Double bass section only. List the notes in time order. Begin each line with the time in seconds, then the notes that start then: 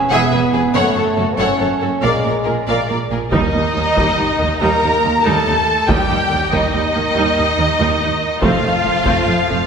0.12 E1
0.33 E1
0.54 E1
0.75 F#1
0.96 F#1
1.18 F#1
1.40 F#1
1.61 F#1
1.83 F#1
2.04 A#1
2.25 A#1
2.47 A#1
2.69 A#1
2.89 A#1
3.11 A#1
3.34 D#2
3.54 D#2
3.76 D#2
3.97 D#2
4.18 D#2
4.40 D#2
4.61 D#2
4.83 D#2
5.04 D#2
5.27 D#2
5.48 D#2
5.88 D#2
6.11 D#2
6.31 D#2
6.52 D#2
6.73 D#2
6.95 D#2
7.16 D#2
7.37 D#2
7.59 D#2
7.80 D#2
8.02 D#2
8.43 F1
8.64 F1
8.85 F1
9.06 F1
9.27 F1
9.50 F1